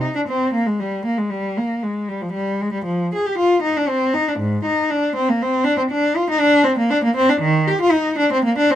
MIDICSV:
0, 0, Header, 1, 2, 480
1, 0, Start_track
1, 0, Key_signature, -3, "minor"
1, 0, Tempo, 519931
1, 1204, Time_signature, 3, 2, 24, 8
1, 3126, Tempo, 499168
1, 6486, Tempo, 514139
1, 8233, End_track
2, 0, Start_track
2, 0, Title_t, "Cello"
2, 0, Program_c, 0, 42
2, 12, Note_on_c, 0, 63, 49
2, 128, Note_off_c, 0, 63, 0
2, 144, Note_on_c, 0, 62, 58
2, 188, Note_off_c, 0, 62, 0
2, 265, Note_on_c, 0, 60, 60
2, 489, Note_off_c, 0, 60, 0
2, 492, Note_on_c, 0, 58, 60
2, 604, Note_off_c, 0, 58, 0
2, 615, Note_on_c, 0, 56, 53
2, 728, Note_off_c, 0, 56, 0
2, 735, Note_on_c, 0, 55, 53
2, 967, Note_off_c, 0, 55, 0
2, 970, Note_on_c, 0, 58, 58
2, 1084, Note_off_c, 0, 58, 0
2, 1087, Note_on_c, 0, 56, 48
2, 1200, Note_on_c, 0, 55, 58
2, 1207, Note_off_c, 0, 56, 0
2, 1445, Note_off_c, 0, 55, 0
2, 1452, Note_on_c, 0, 58, 50
2, 1686, Note_off_c, 0, 58, 0
2, 1694, Note_on_c, 0, 56, 48
2, 1922, Note_off_c, 0, 56, 0
2, 1926, Note_on_c, 0, 55, 51
2, 2039, Note_off_c, 0, 55, 0
2, 2044, Note_on_c, 0, 53, 55
2, 2153, Note_on_c, 0, 55, 55
2, 2157, Note_off_c, 0, 53, 0
2, 2389, Note_off_c, 0, 55, 0
2, 2409, Note_on_c, 0, 56, 64
2, 2519, Note_on_c, 0, 55, 57
2, 2526, Note_off_c, 0, 56, 0
2, 2637, Note_on_c, 0, 53, 57
2, 2642, Note_off_c, 0, 55, 0
2, 2882, Note_off_c, 0, 53, 0
2, 2900, Note_on_c, 0, 68, 56
2, 3009, Note_on_c, 0, 67, 59
2, 3012, Note_off_c, 0, 68, 0
2, 3127, Note_off_c, 0, 67, 0
2, 3134, Note_on_c, 0, 65, 63
2, 3354, Note_on_c, 0, 63, 60
2, 3369, Note_off_c, 0, 65, 0
2, 3480, Note_off_c, 0, 63, 0
2, 3491, Note_on_c, 0, 62, 59
2, 3605, Note_on_c, 0, 60, 66
2, 3612, Note_off_c, 0, 62, 0
2, 3850, Note_off_c, 0, 60, 0
2, 3850, Note_on_c, 0, 63, 73
2, 3973, Note_off_c, 0, 63, 0
2, 3987, Note_on_c, 0, 62, 49
2, 4099, Note_on_c, 0, 44, 61
2, 4102, Note_off_c, 0, 62, 0
2, 4333, Note_off_c, 0, 44, 0
2, 4347, Note_on_c, 0, 63, 56
2, 4576, Note_off_c, 0, 63, 0
2, 4583, Note_on_c, 0, 62, 65
2, 4819, Note_off_c, 0, 62, 0
2, 4827, Note_on_c, 0, 60, 76
2, 4939, Note_off_c, 0, 60, 0
2, 4957, Note_on_c, 0, 58, 62
2, 5067, Note_off_c, 0, 58, 0
2, 5084, Note_on_c, 0, 60, 68
2, 5297, Note_on_c, 0, 62, 77
2, 5311, Note_off_c, 0, 60, 0
2, 5416, Note_off_c, 0, 62, 0
2, 5426, Note_on_c, 0, 60, 58
2, 5471, Note_off_c, 0, 60, 0
2, 5556, Note_on_c, 0, 62, 64
2, 5777, Note_off_c, 0, 62, 0
2, 5797, Note_on_c, 0, 65, 65
2, 5903, Note_off_c, 0, 65, 0
2, 5927, Note_on_c, 0, 63, 76
2, 6024, Note_on_c, 0, 62, 85
2, 6026, Note_off_c, 0, 63, 0
2, 6255, Note_off_c, 0, 62, 0
2, 6256, Note_on_c, 0, 60, 69
2, 6371, Note_off_c, 0, 60, 0
2, 6392, Note_on_c, 0, 58, 64
2, 6496, Note_off_c, 0, 58, 0
2, 6508, Note_on_c, 0, 62, 82
2, 6615, Note_off_c, 0, 62, 0
2, 6636, Note_on_c, 0, 58, 75
2, 6738, Note_off_c, 0, 58, 0
2, 6749, Note_on_c, 0, 60, 87
2, 6857, Note_off_c, 0, 60, 0
2, 6872, Note_on_c, 0, 62, 74
2, 6985, Note_off_c, 0, 62, 0
2, 6990, Note_on_c, 0, 51, 73
2, 7221, Note_off_c, 0, 51, 0
2, 7228, Note_on_c, 0, 67, 73
2, 7341, Note_off_c, 0, 67, 0
2, 7355, Note_on_c, 0, 65, 84
2, 7455, Note_on_c, 0, 63, 75
2, 7461, Note_off_c, 0, 65, 0
2, 7691, Note_off_c, 0, 63, 0
2, 7699, Note_on_c, 0, 62, 74
2, 7811, Note_off_c, 0, 62, 0
2, 7833, Note_on_c, 0, 60, 71
2, 7938, Note_off_c, 0, 60, 0
2, 7946, Note_on_c, 0, 58, 77
2, 8055, Note_off_c, 0, 58, 0
2, 8070, Note_on_c, 0, 62, 75
2, 8176, Note_off_c, 0, 62, 0
2, 8191, Note_on_c, 0, 60, 73
2, 8233, Note_off_c, 0, 60, 0
2, 8233, End_track
0, 0, End_of_file